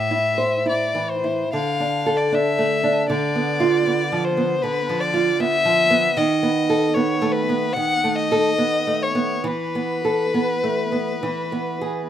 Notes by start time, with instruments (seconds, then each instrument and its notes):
Already playing: nylon-string guitar A2, violin E5
0.11 nylon-string guitar E4
0.38 nylon-string guitar C5
0.66 nylon-string guitar E4, violin D5
0.95 nylon-string guitar E3
1.10 violin C5
1.24 nylon-string guitar E4
1.53 nylon-string guitar D3, violin F5
1.80 nylon-string guitar D4
2.06 nylon-string guitar A4
2.17 violin D5
2.32 nylon-string guitar D4, violin E5
2.58 nylon-string guitar A3
2.83 nylon-string guitar D4
3.09 nylon-string guitar D3, violin D5
3.35 nylon-string guitar B3
3.60 nylon-string guitar F4
3.86 nylon-string guitar B3
4.12 nylon-string guitar F3
4.24 violin C5
4.37 nylon-string guitar B3
4.62 nylon-string guitar D3, violin B4
4.89 nylon-string guitar F3
5.00 violin D5
5.14 nylon-string guitar F4
5.40 nylon-string guitar B3, violin E5
5.65 nylon-string guitar F3
5.90 nylon-string guitar B3
6.17 nylon-string guitar D#3, violin D#5
6.43 nylon-string guitar B3
6.70 nylon-string guitar A4
6.94 nylon-string guitar B3, violin C#5
7.22 nylon-string guitar A3
7.32 violin B4
7.49 nylon-string guitar B3
7.73 nylon-string guitar D#3, violin F#5
8.04 nylon-string guitar A3
8.16 violin D#5
8.32 nylon-string guitar A4
8.58 nylon-string guitar B3
8.87 nylon-string guitar A3
9.03 violin C#5
9.15 nylon-string guitar B3
9.44 nylon-string guitar E3, violin B4
9.75 nylon-string guitar B3
10.05 nylon-string guitar A4
10.34 nylon-string guitar B3
10.64 nylon-string guitar A3
10.92 nylon-string guitar B3
11.23 nylon-string guitar E3
11.52 nylon-string guitar B3
11.81 nylon-string guitar G#4